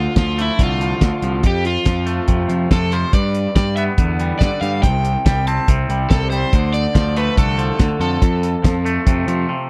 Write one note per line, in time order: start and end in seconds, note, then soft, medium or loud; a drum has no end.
0.00 0.58 D3 medium
0.00 0.14 F4 medium
0.16 0.49 D2 medium
0.16 0.81 F3 medium
0.16 0.39 F4 medium
0.16 kick loud
0.16 snare loud
0.16 closed hi-hat medium
0.38 1.44 A3 medium
0.38 0.60 E4 medium
0.38 closed hi-hat medium
0.59 0.92 C2 medium
0.59 1.01 D3 medium
0.59 kick loud
0.59 closed hi-hat medium
0.63 1.42 F4 medium
0.81 1.22 F3 medium
0.81 closed hi-hat medium
1.01 1.09 D2 medium
1.01 1.45 D3 medium
1.01 kick medium
1.01 snare loud
1.01 closed hi-hat medium
1.22 1.43 C2 medium
1.22 1.45 F3 medium
1.22 closed hi-hat medium
1.43 1.76 F2 medium
1.43 2.51 F2 medium
1.43 1.66 G4 medium
1.43 kick medium
1.43 closed hi-hat medium
1.65 2.72 F4 medium
1.65 closed hi-hat medium
1.86 2.19 F2 medium
1.86 2.48 F3 medium
1.86 kick loud
1.86 snare loud
1.86 closed hi-hat medium
2.06 3.13 A3 medium
2.06 closed hi-hat medium
2.28 2.45 F2 medium
2.28 2.71 C3 medium
2.28 kick loud
2.28 closed hi-hat medium
2.49 2.66 F2 medium
2.49 2.92 F3 medium
2.49 closed hi-hat medium
2.71 3.03 F2 medium
2.71 3.15 C3 medium
2.71 2.94 A4 medium
2.71 kick medium
2.71 snare loud
2.71 closed hi-hat medium
2.92 3.14 F3 medium
2.92 3.14 C5 medium
2.92 closed hi-hat medium
3.13 3.46 G2 medium
3.13 4.20 G2 medium
3.13 3.55 D5 medium
3.13 kick loud
3.13 closed hi-hat medium
3.35 closed hi-hat medium
3.55 3.88 G2 medium
3.55 4.19 G3 medium
3.55 3.76 D5 medium
3.55 kick loud
3.55 snare loud
3.55 closed hi-hat medium
3.77 4.84 B3 medium
3.77 3.82 E5 medium
3.77 closed hi-hat medium
3.98 4.31 E2 medium
3.98 4.40 D3 medium
3.98 kick loud
3.98 closed hi-hat medium
4.20 4.61 G3 medium
4.20 closed hi-hat medium
4.39 4.49 G2 medium
4.39 4.84 D3 medium
4.39 4.60 D5 medium
4.39 kick loud
4.39 snare loud
4.39 closed hi-hat medium
4.61 4.84 G2 medium
4.61 4.84 G3 medium
4.61 4.81 F5 medium
4.61 closed hi-hat medium
4.83 5.15 C2 medium
4.83 5.67 C3 medium
4.83 5.25 G5 medium
4.83 kick medium
4.83 closed hi-hat medium
5.05 closed hi-hat medium
5.25 5.58 C2 medium
5.25 5.89 G3 medium
5.25 5.47 G5 medium
5.25 kick loud
5.25 snare loud
5.25 closed hi-hat medium
5.47 6.53 C4 medium
5.47 5.67 A5 medium
5.47 closed hi-hat medium
5.68 5.84 C2 medium
5.68 6.10 C3 medium
5.68 kick loud
5.68 closed hi-hat medium
5.89 6.05 C2 medium
5.89 6.31 G3 medium
5.89 closed hi-hat medium
6.10 6.43 C2 medium
6.10 6.53 C3 medium
6.10 6.30 A4 medium
6.10 kick loud
6.10 snare loud
6.10 closed hi-hat medium
6.30 6.53 G3 medium
6.30 6.75 C5 medium
6.30 closed hi-hat medium
6.53 6.86 D2 loud
6.53 7.37 D3 medium
6.53 kick loud
6.53 closed hi-hat medium
6.74 7.18 D5 loud
6.74 closed hi-hat medium
6.95 7.28 D2 medium
6.95 7.57 F3 medium
6.95 kick loud
6.95 snare loud
6.95 closed hi-hat medium
7.16 8.23 A3 medium
7.16 7.38 B4 medium
7.16 closed hi-hat medium
7.37 7.70 C2 medium
7.37 7.78 D3 medium
7.37 8.00 A4 medium
7.37 kick loud
7.37 closed hi-hat medium
7.58 7.99 F3 medium
7.58 closed hi-hat medium
7.79 7.88 D2 medium
7.79 8.22 D3 medium
7.79 kick loud
7.79 snare loud
7.79 closed hi-hat medium
8.00 8.17 F2 medium
8.00 8.22 F3 medium
8.00 9.46 A4 medium
8.00 closed hi-hat medium
8.22 8.55 F2 medium
8.22 9.28 F2 medium
8.22 kick loud
8.22 closed hi-hat medium
8.43 closed hi-hat medium
8.64 8.97 F2 medium
8.64 9.27 F3 medium
8.64 kick loud
8.64 snare loud
8.64 closed hi-hat medium
8.85 9.70 A3 medium
8.85 closed hi-hat medium
9.07 9.23 F2 medium
9.07 9.48 C3 medium
9.07 kick loud
9.07 closed hi-hat medium
9.28 9.44 F2 medium
9.28 9.70 F3 medium
9.28 closed hi-hat medium
9.49 9.70 C3 medium